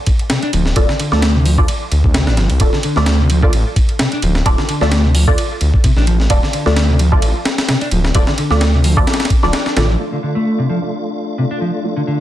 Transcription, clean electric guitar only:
0, 0, Header, 1, 2, 480
1, 0, Start_track
1, 0, Key_signature, -1, "minor"
1, 0, Tempo, 461538
1, 796, Time_signature, 4, 2, 24, 8
1, 12689, End_track
2, 0, Start_track
2, 0, Title_t, "Clean electric guitar"
2, 0, Program_c, 0, 27
2, 318, Note_on_c, 0, 48, 82
2, 373, Note_off_c, 0, 48, 0
2, 444, Note_on_c, 0, 62, 100
2, 523, Note_off_c, 0, 62, 0
2, 551, Note_on_c, 0, 53, 76
2, 648, Note_off_c, 0, 53, 0
2, 926, Note_on_c, 0, 50, 74
2, 973, Note_off_c, 0, 50, 0
2, 1033, Note_on_c, 0, 50, 78
2, 1160, Note_off_c, 0, 50, 0
2, 1163, Note_on_c, 0, 57, 98
2, 1392, Note_off_c, 0, 57, 0
2, 1399, Note_on_c, 0, 48, 76
2, 1481, Note_off_c, 0, 48, 0
2, 1511, Note_on_c, 0, 53, 74
2, 1607, Note_off_c, 0, 53, 0
2, 2230, Note_on_c, 0, 48, 81
2, 2289, Note_off_c, 0, 48, 0
2, 2360, Note_on_c, 0, 62, 103
2, 2441, Note_off_c, 0, 62, 0
2, 2466, Note_on_c, 0, 53, 72
2, 2565, Note_off_c, 0, 53, 0
2, 2846, Note_on_c, 0, 50, 74
2, 2893, Note_off_c, 0, 50, 0
2, 2955, Note_on_c, 0, 50, 78
2, 3081, Note_off_c, 0, 50, 0
2, 3088, Note_on_c, 0, 57, 97
2, 3314, Note_off_c, 0, 57, 0
2, 3334, Note_on_c, 0, 48, 73
2, 3408, Note_off_c, 0, 48, 0
2, 3439, Note_on_c, 0, 53, 74
2, 3532, Note_off_c, 0, 53, 0
2, 4161, Note_on_c, 0, 48, 82
2, 4215, Note_off_c, 0, 48, 0
2, 4293, Note_on_c, 0, 62, 99
2, 4367, Note_off_c, 0, 62, 0
2, 4402, Note_on_c, 0, 53, 76
2, 4493, Note_off_c, 0, 53, 0
2, 4771, Note_on_c, 0, 50, 77
2, 4816, Note_off_c, 0, 50, 0
2, 4877, Note_on_c, 0, 50, 76
2, 5002, Note_off_c, 0, 50, 0
2, 5007, Note_on_c, 0, 57, 101
2, 5234, Note_off_c, 0, 57, 0
2, 5250, Note_on_c, 0, 48, 77
2, 5326, Note_off_c, 0, 48, 0
2, 5362, Note_on_c, 0, 53, 77
2, 5453, Note_off_c, 0, 53, 0
2, 6078, Note_on_c, 0, 48, 86
2, 6133, Note_off_c, 0, 48, 0
2, 6208, Note_on_c, 0, 62, 103
2, 6285, Note_off_c, 0, 62, 0
2, 6315, Note_on_c, 0, 53, 76
2, 6409, Note_off_c, 0, 53, 0
2, 6691, Note_on_c, 0, 50, 75
2, 6735, Note_off_c, 0, 50, 0
2, 6799, Note_on_c, 0, 50, 78
2, 6923, Note_off_c, 0, 50, 0
2, 6928, Note_on_c, 0, 57, 100
2, 7155, Note_off_c, 0, 57, 0
2, 7173, Note_on_c, 0, 48, 76
2, 7247, Note_off_c, 0, 48, 0
2, 7279, Note_on_c, 0, 53, 76
2, 7371, Note_off_c, 0, 53, 0
2, 7996, Note_on_c, 0, 48, 82
2, 8053, Note_off_c, 0, 48, 0
2, 8126, Note_on_c, 0, 62, 100
2, 8204, Note_off_c, 0, 62, 0
2, 8237, Note_on_c, 0, 53, 75
2, 8331, Note_off_c, 0, 53, 0
2, 8609, Note_on_c, 0, 50, 78
2, 8655, Note_off_c, 0, 50, 0
2, 8718, Note_on_c, 0, 50, 76
2, 8843, Note_off_c, 0, 50, 0
2, 8850, Note_on_c, 0, 57, 104
2, 9075, Note_off_c, 0, 57, 0
2, 9092, Note_on_c, 0, 48, 76
2, 9167, Note_off_c, 0, 48, 0
2, 9204, Note_on_c, 0, 53, 76
2, 9294, Note_off_c, 0, 53, 0
2, 9817, Note_on_c, 0, 53, 73
2, 9858, Note_off_c, 0, 53, 0
2, 9924, Note_on_c, 0, 62, 87
2, 10014, Note_off_c, 0, 62, 0
2, 10052, Note_on_c, 0, 62, 77
2, 10127, Note_off_c, 0, 62, 0
2, 10162, Note_on_c, 0, 50, 99
2, 10253, Note_off_c, 0, 50, 0
2, 10295, Note_on_c, 0, 53, 76
2, 10338, Note_off_c, 0, 53, 0
2, 10532, Note_on_c, 0, 50, 72
2, 10576, Note_off_c, 0, 50, 0
2, 10640, Note_on_c, 0, 50, 74
2, 10763, Note_off_c, 0, 50, 0
2, 10766, Note_on_c, 0, 57, 91
2, 10994, Note_off_c, 0, 57, 0
2, 11010, Note_on_c, 0, 48, 72
2, 11086, Note_off_c, 0, 48, 0
2, 11122, Note_on_c, 0, 53, 71
2, 11213, Note_off_c, 0, 53, 0
2, 11837, Note_on_c, 0, 48, 79
2, 11893, Note_off_c, 0, 48, 0
2, 11970, Note_on_c, 0, 62, 96
2, 12046, Note_off_c, 0, 62, 0
2, 12075, Note_on_c, 0, 53, 68
2, 12169, Note_off_c, 0, 53, 0
2, 12444, Note_on_c, 0, 50, 71
2, 12492, Note_off_c, 0, 50, 0
2, 12557, Note_on_c, 0, 50, 70
2, 12682, Note_off_c, 0, 50, 0
2, 12689, End_track
0, 0, End_of_file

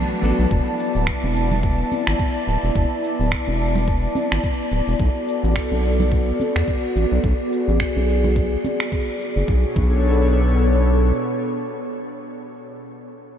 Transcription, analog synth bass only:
0, 0, Header, 1, 2, 480
1, 0, Start_track
1, 0, Tempo, 560748
1, 437, Time_signature, 4, 2, 24, 8
1, 11458, End_track
2, 0, Start_track
2, 0, Title_t, "Analog synth bass"
2, 0, Program_c, 0, 38
2, 196, Note_on_c, 0, 33, 89
2, 281, Note_off_c, 0, 33, 0
2, 334, Note_on_c, 0, 35, 90
2, 397, Note_off_c, 0, 35, 0
2, 437, Note_on_c, 0, 28, 90
2, 522, Note_off_c, 0, 28, 0
2, 815, Note_on_c, 0, 26, 81
2, 949, Note_off_c, 0, 26, 0
2, 1056, Note_on_c, 0, 28, 88
2, 1575, Note_off_c, 0, 28, 0
2, 1775, Note_on_c, 0, 32, 85
2, 1838, Note_off_c, 0, 32, 0
2, 2119, Note_on_c, 0, 26, 90
2, 2203, Note_off_c, 0, 26, 0
2, 2255, Note_on_c, 0, 28, 92
2, 2318, Note_off_c, 0, 28, 0
2, 2358, Note_on_c, 0, 28, 87
2, 2442, Note_off_c, 0, 28, 0
2, 2736, Note_on_c, 0, 26, 84
2, 2870, Note_off_c, 0, 26, 0
2, 2975, Note_on_c, 0, 28, 86
2, 3495, Note_off_c, 0, 28, 0
2, 3697, Note_on_c, 0, 32, 78
2, 3759, Note_off_c, 0, 32, 0
2, 4037, Note_on_c, 0, 26, 93
2, 4122, Note_off_c, 0, 26, 0
2, 4174, Note_on_c, 0, 28, 85
2, 4237, Note_off_c, 0, 28, 0
2, 4277, Note_on_c, 0, 35, 81
2, 4362, Note_off_c, 0, 35, 0
2, 4653, Note_on_c, 0, 33, 78
2, 4788, Note_off_c, 0, 33, 0
2, 4892, Note_on_c, 0, 35, 86
2, 5413, Note_off_c, 0, 35, 0
2, 5614, Note_on_c, 0, 40, 83
2, 5677, Note_off_c, 0, 40, 0
2, 5957, Note_on_c, 0, 33, 90
2, 6042, Note_off_c, 0, 33, 0
2, 6093, Note_on_c, 0, 35, 91
2, 6157, Note_off_c, 0, 35, 0
2, 6196, Note_on_c, 0, 35, 88
2, 6281, Note_off_c, 0, 35, 0
2, 6573, Note_on_c, 0, 33, 83
2, 6709, Note_off_c, 0, 33, 0
2, 6815, Note_on_c, 0, 35, 80
2, 7335, Note_off_c, 0, 35, 0
2, 8014, Note_on_c, 0, 30, 87
2, 8078, Note_off_c, 0, 30, 0
2, 8117, Note_on_c, 0, 35, 84
2, 8264, Note_off_c, 0, 35, 0
2, 8356, Note_on_c, 0, 35, 90
2, 9522, Note_off_c, 0, 35, 0
2, 11458, End_track
0, 0, End_of_file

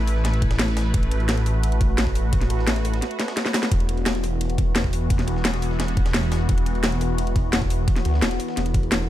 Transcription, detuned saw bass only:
0, 0, Header, 1, 2, 480
1, 0, Start_track
1, 0, Tempo, 346821
1, 1302, Time_signature, 4, 2, 24, 8
1, 12583, End_track
2, 0, Start_track
2, 0, Title_t, "Detuned saw bass"
2, 0, Program_c, 0, 39
2, 0, Note_on_c, 0, 33, 92
2, 1284, Note_off_c, 0, 33, 0
2, 1302, Note_on_c, 0, 33, 97
2, 3203, Note_off_c, 0, 33, 0
2, 3222, Note_on_c, 0, 33, 94
2, 3443, Note_off_c, 0, 33, 0
2, 3463, Note_on_c, 0, 33, 94
2, 4164, Note_off_c, 0, 33, 0
2, 5143, Note_on_c, 0, 28, 97
2, 7044, Note_off_c, 0, 28, 0
2, 7062, Note_on_c, 0, 28, 96
2, 8963, Note_off_c, 0, 28, 0
2, 8982, Note_on_c, 0, 28, 95
2, 10883, Note_off_c, 0, 28, 0
2, 11143, Note_on_c, 0, 38, 95
2, 11364, Note_off_c, 0, 38, 0
2, 11383, Note_on_c, 0, 28, 98
2, 11604, Note_off_c, 0, 28, 0
2, 11864, Note_on_c, 0, 28, 98
2, 12583, Note_off_c, 0, 28, 0
2, 12583, End_track
0, 0, End_of_file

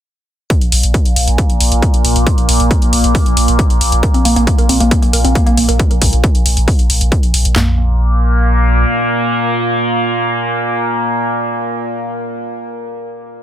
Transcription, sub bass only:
0, 0, Header, 1, 2, 480
1, 0, Start_track
1, 0, Tempo, 441176
1, 545, Time_signature, 4, 2, 24, 8
1, 14611, End_track
2, 0, Start_track
2, 0, Title_t, "Sub bass"
2, 0, Program_c, 0, 38
2, 667, Note_on_c, 0, 34, 73
2, 778, Note_off_c, 0, 34, 0
2, 785, Note_on_c, 0, 34, 90
2, 900, Note_off_c, 0, 34, 0
2, 907, Note_on_c, 0, 34, 76
2, 1023, Note_off_c, 0, 34, 0
2, 1147, Note_on_c, 0, 34, 74
2, 1258, Note_off_c, 0, 34, 0
2, 1265, Note_on_c, 0, 34, 94
2, 1380, Note_off_c, 0, 34, 0
2, 1386, Note_on_c, 0, 34, 81
2, 1503, Note_off_c, 0, 34, 0
2, 1627, Note_on_c, 0, 34, 78
2, 1739, Note_off_c, 0, 34, 0
2, 1745, Note_on_c, 0, 34, 100
2, 1860, Note_off_c, 0, 34, 0
2, 1867, Note_on_c, 0, 34, 79
2, 1983, Note_off_c, 0, 34, 0
2, 2106, Note_on_c, 0, 34, 76
2, 2219, Note_off_c, 0, 34, 0
2, 2225, Note_on_c, 0, 34, 98
2, 2341, Note_off_c, 0, 34, 0
2, 2347, Note_on_c, 0, 34, 80
2, 2463, Note_off_c, 0, 34, 0
2, 2587, Note_on_c, 0, 34, 75
2, 2699, Note_off_c, 0, 34, 0
2, 2706, Note_on_c, 0, 34, 96
2, 2821, Note_off_c, 0, 34, 0
2, 2827, Note_on_c, 0, 34, 82
2, 2943, Note_off_c, 0, 34, 0
2, 3067, Note_on_c, 0, 34, 77
2, 3179, Note_off_c, 0, 34, 0
2, 3185, Note_on_c, 0, 34, 94
2, 3301, Note_off_c, 0, 34, 0
2, 3308, Note_on_c, 0, 34, 79
2, 3423, Note_off_c, 0, 34, 0
2, 3547, Note_on_c, 0, 34, 78
2, 3658, Note_off_c, 0, 34, 0
2, 3665, Note_on_c, 0, 34, 101
2, 3780, Note_off_c, 0, 34, 0
2, 3787, Note_on_c, 0, 34, 77
2, 3903, Note_off_c, 0, 34, 0
2, 4027, Note_on_c, 0, 34, 77
2, 4138, Note_off_c, 0, 34, 0
2, 4145, Note_on_c, 0, 34, 94
2, 4260, Note_off_c, 0, 34, 0
2, 4267, Note_on_c, 0, 34, 79
2, 4383, Note_off_c, 0, 34, 0
2, 4506, Note_on_c, 0, 34, 77
2, 4618, Note_off_c, 0, 34, 0
2, 4625, Note_on_c, 0, 34, 95
2, 4740, Note_off_c, 0, 34, 0
2, 4746, Note_on_c, 0, 34, 78
2, 4863, Note_off_c, 0, 34, 0
2, 4986, Note_on_c, 0, 34, 77
2, 5098, Note_off_c, 0, 34, 0
2, 5104, Note_on_c, 0, 34, 95
2, 5219, Note_off_c, 0, 34, 0
2, 5226, Note_on_c, 0, 34, 79
2, 5342, Note_off_c, 0, 34, 0
2, 5467, Note_on_c, 0, 34, 79
2, 5578, Note_off_c, 0, 34, 0
2, 5584, Note_on_c, 0, 34, 101
2, 5700, Note_off_c, 0, 34, 0
2, 5707, Note_on_c, 0, 34, 80
2, 5823, Note_off_c, 0, 34, 0
2, 5946, Note_on_c, 0, 34, 76
2, 6058, Note_off_c, 0, 34, 0
2, 6065, Note_on_c, 0, 34, 96
2, 6180, Note_off_c, 0, 34, 0
2, 6186, Note_on_c, 0, 34, 81
2, 6302, Note_off_c, 0, 34, 0
2, 6427, Note_on_c, 0, 34, 76
2, 6538, Note_off_c, 0, 34, 0
2, 6545, Note_on_c, 0, 34, 94
2, 6660, Note_off_c, 0, 34, 0
2, 6666, Note_on_c, 0, 34, 81
2, 6782, Note_off_c, 0, 34, 0
2, 6905, Note_on_c, 0, 34, 77
2, 7018, Note_off_c, 0, 34, 0
2, 7024, Note_on_c, 0, 34, 96
2, 7139, Note_off_c, 0, 34, 0
2, 7146, Note_on_c, 0, 34, 85
2, 7262, Note_off_c, 0, 34, 0
2, 7386, Note_on_c, 0, 34, 81
2, 7498, Note_off_c, 0, 34, 0
2, 7504, Note_on_c, 0, 34, 100
2, 7619, Note_off_c, 0, 34, 0
2, 7626, Note_on_c, 0, 34, 79
2, 7742, Note_off_c, 0, 34, 0
2, 7866, Note_on_c, 0, 34, 75
2, 7977, Note_off_c, 0, 34, 0
2, 7983, Note_on_c, 0, 34, 99
2, 8099, Note_off_c, 0, 34, 0
2, 8105, Note_on_c, 0, 34, 82
2, 8217, Note_off_c, 0, 34, 0
2, 8224, Note_on_c, 0, 34, 99
2, 9621, Note_off_c, 0, 34, 0
2, 14611, End_track
0, 0, End_of_file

